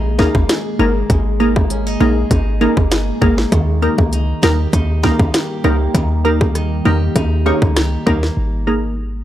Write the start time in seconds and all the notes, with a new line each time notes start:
Already playing: A#1 D#3 G#3 A#3 D#4 G#4
0.19 A#3 D#4 G#4 A#4, kick, snare, high bongo
0.35 G1, kick, high bongo
0.49 G#4, snare, closed hi-hat, high bongo
0.79 G1 A#3 D#4 G#4 A#4, low bongo
1.10 G#1 G#3, kick, closed hi-hat, high bongo
1.40 A#3 D#4 G#4 A#4
1.56 kick, high bongo
1.70 C#4, closed hi-hat
1.87 D#4
2.00 A#1 A#3 D#4 G#4 A#4, low bongo
2.31 G#1 D#4, kick, closed hi-hat, high bongo
2.61 A#3 D#4 G#4 A#4, high bongo
2.77 G1, kick, high bongo
2.91 G#4, snare, closed hi-hat, high bongo
3.22 G#1 A#3 D#4 G#4 A#4, kick, low bongo
3.38 snare
3.52 D#2 D#3 G3 A#3 G4, kick, closed hi-hat, high bongo
3.82 A#3 D#4 G4 A#4
3.98 C#2, kick, high bongo
4.13 D#4, closed hi-hat
4.43 D#2 A#3 D#4 G4 A#4, snare, low bongo
4.73 D#2 D#4, kick, closed hi-hat, high bongo
5.03 A#3 D#4 G4 A#4, kick, snare, high bongo
5.19 C#2, kick, high bongo
5.34 G4, snare, closed hi-hat, high bongo
5.64 C#2 A#3 D#4 G4 A#4, low bongo
5.94 D#2 D#3, kick, closed hi-hat, high bongo
6.25 A#3 D#4 G4 A#4
6.41 kick, high bongo
6.55 D#4, cross-stick, closed hi-hat
6.85 E2 A#3 D#4 G4 A#4, low bongo
7.16 D#2 D#4, kick, closed hi-hat, high bongo
7.46 A#3 D#4 G4 C#5, high bongo
7.62 C#2, kick, high bongo
7.76 G4, cross-stick, snare, closed hi-hat, high bongo
8.06 D#2 A#3 D#4 G4 A#4, kick, low bongo
8.23 snare
8.37 G#1 D#3 G#3 A#3 G#4
8.67 A#3 D#4 G#4 A#4